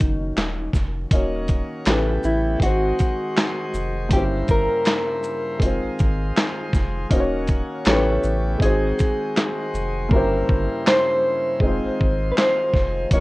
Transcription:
Already playing: upright piano D#3 F#3 A#3 C#4 F#4, clean electric guitar D#4
0.00 sub bass F#1, kick, closed hi-hat, shaker
0.37 sub bass D#1, snare, clap, closed hi-hat
0.73 sub bass F1, kick, snare, shaker
1.10 sub bass D#1, pipe organ D#3 A#3 C#4 F#4, upright piano A#3 C#4 D#4 F#4, kick, closed hi-hat
1.15 upright piano C#5
1.48 kick, closed hi-hat, shaker
1.86 sub bass A1, pipe organ C#3 A3 B3 G4, upright piano A3 C#4 E4 G4, snare, clap, closed hi-hat
1.90 upright piano B4
2.24 sub bass A1, clean electric guitar E4, shaker
2.58 sub bass G#1, pipe organ D#3 G#3 F#4 C5, upright piano G#3 C4 D#4, kick, closed hi-hat
2.63 clean electric guitar F#4, upright piano F#4 C5
2.99 kick, closed hi-hat, shaker
3.37 snare, clap, closed hi-hat
3.74 sub bass F1, shaker
4.09 sub bass G1, upright piano G2 A#3 C#4, pipe organ C#3 A#3 E4, clean electric guitar G4, kick, closed hi-hat
4.14 upright piano E4 G4 C5
4.48 sub bass G1, clean electric guitar A#4, kick, closed hi-hat, shaker
4.85 snare, clap, closed hi-hat
5.23 shaker
5.58 sub bass F1, pipe organ D#3 G#3 F4, upright piano G#3 C4, kick, closed hi-hat
5.62 upright piano D#4 F4 C5
5.84 sub bass G#1
5.99 sub bass G#1, kick, closed hi-hat, shaker
6.37 snare, clap, closed hi-hat
6.73 sub bass F1, kick, snare, shaker
7.09 sub bass D#1, upright piano A#3 C#4 D#4 F#4, pipe organ A#3 C#4 F#4, kick, closed hi-hat
7.13 upright piano C5
7.20 upright piano C#5
7.47 kick, closed hi-hat, shaker
7.85 sub bass A1, pipe organ C#3 A3 B3 G4, upright piano A3 C#4 E4 G4, clean electric guitar C#5, snare, clap, closed hi-hat
7.89 upright piano B4
8.23 sub bass A1, shaker
8.57 sub bass G#1, pipe organ D#3 G#3 F#4 C5, upright piano G#3 C4 D#4, kick
8.62 upright piano F#4 C5, clean electric guitar G#4, closed hi-hat
8.99 kick, closed hi-hat, shaker
9.37 snare, clap, closed hi-hat
9.74 sub bass F1, shaker
10.09 sub bass G1, upright piano G2 A#3 C#4, pipe organ C#3 A#3 E4, clean electric guitar A#4, kick
10.14 upright piano E4 G4 C5
10.49 sub bass G1, kick
10.87 clean electric guitar C5, snare, clap
11.60 sub bass F1, pipe organ D#3 G#3 F4, upright piano G#3 C4 D#4, kick
11.65 upright piano F4 C5
11.84 sub bass G#1
12.01 sub bass G#1, kick
12.31 clean electric guitar B4
12.37 clean electric guitar C5, snare, clap
12.74 sub bass F1, kick, snare
13.11 sub bass D#1, upright piano F#3 A#3 C#4 D#4, pipe organ A#3 C#4 F#4, clean electric guitar C#5, kick, closed hi-hat
13.15 upright piano A#4

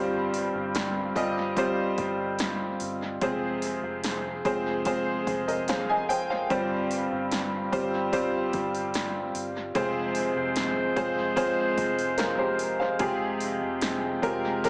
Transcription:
Already playing: fingered electric bass G1, upright piano G2 G3 C4 F4 G4 C5, woodwind section G3 C4 F4
0.34 open hi-hat
0.55 fingered electric bass G1
0.75 snare, open hi-hat
1.15 fingered electric bass G1, upright piano G3 C4 F4 G4 D#5, kick, open hi-hat
1.57 upright piano G3 C4 F4 G4 C5, kick, open hi-hat
1.98 fingered electric bass G1, kick, open hi-hat
2.39 snare, open hi-hat
2.80 fingered electric bass G1, open hi-hat
3.21 fingered electric bass F1, upright piano C3 G#3 C4 F4 G#4 C5, woodwind section F3 G#4 C5, kick, open hi-hat
3.62 open hi-hat
3.83 fingered electric bass F1
4.04 snare, open hi-hat
4.45 fingered electric bass F1, upright piano G#3 C4 F4 G#4 C5, kick, open hi-hat
4.85 upright piano G#3 C4 F4 G#4 C5, kick, open hi-hat
5.27 fingered electric bass F1, kick, open hi-hat
5.48 upright piano A#4 D#5, open hi-hat
5.68 upright piano C5 F5, snare, open hi-hat
5.89 upright piano D#5 G#5
6.09 upright piano C5 G5, open hi-hat
6.30 upright piano C5 F5
6.50 fingered electric bass G1, upright piano G2 G3 C4 F4 G4 C5, woodwind section G3 C4, kick, open hi-hat
6.91 open hi-hat
7.12 fingered electric bass G1
7.32 snare, open hi-hat
7.72 fingered electric bass G1, upright piano G3 C4 F4 G4 C5, kick, open hi-hat
8.12 upright piano G3 C4 F4 G4 C5, kick, open hi-hat
8.53 fingered electric bass G1, kick, open hi-hat
8.75 open hi-hat
8.94 snare, open hi-hat
9.35 fingered electric bass G1, open hi-hat
9.75 fingered electric bass F1, upright piano C3 G#3 C4 F4 G#4 C5, woodwind section F3 G#3 F4 C5, kick, open hi-hat
10.15 open hi-hat
10.36 fingered electric bass F1
10.56 snare, open hi-hat
10.96 fingered electric bass F1, upright piano G#3 C4 F4 G#4 C5, kick, open hi-hat
11.36 upright piano G#3 C4 F4 G#4 C5, kick, open hi-hat
11.78 fingered electric bass F1, kick, open hi-hat
11.99 open hi-hat
12.18 upright piano F4 A#4, snare, open hi-hat
12.39 upright piano G4 C5
12.59 open hi-hat
12.80 upright piano C5 F5
12.99 fingered electric bass F1, upright piano C3 G#3 C4 F4 G4 G#4, woodwind section G#3 F4 G5, kick, open hi-hat
13.40 open hi-hat
13.62 fingered electric bass F1
13.81 snare, open hi-hat
14.22 fingered electric bass F1, upright piano G#3 C4 F4 G4 A#4, kick, open hi-hat
14.64 upright piano G#3 C4 F4 G4 A#4, kick, snare, open hi-hat

